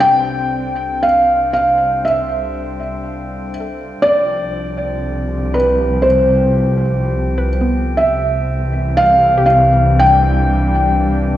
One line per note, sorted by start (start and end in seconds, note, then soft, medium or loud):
0.00 3.96 C2 medium
0.00 0.12 C3 medium
0.00 4.01 G3 medium
0.00 0.11 C4 medium
0.00 5.61 D4 medium
0.00 9.61 A4 medium
0.00 11.37 G5 medium
0.00 1.04 G5 loud
0.73 5.62 C5 medium
1.02 1.52 F5 medium
1.53 2.04 F5 medium
2.05 3.49 E5 medium
3.60 8.17 A4 soft
4.00 7.96 C2 medium
4.00 8.00 F3 medium
4.00 5.56 D5 loud
5.01 9.60 G4 medium
5.54 6.04 B4 medium
6.02 7.48 C5 medium
7.38 9.59 B4 medium
7.61 11.37 B3 medium
7.97 11.37 C3 medium
7.97 9.02 E5 medium
8.02 11.37 C2 medium
8.51 11.37 E3 medium
8.77 11.37 G3 medium
8.97 9.45 F5 loud
9.38 11.37 G4 medium
9.46 10.00 F5 medium
9.80 11.37 D4 medium
9.99 11.37 G5 loud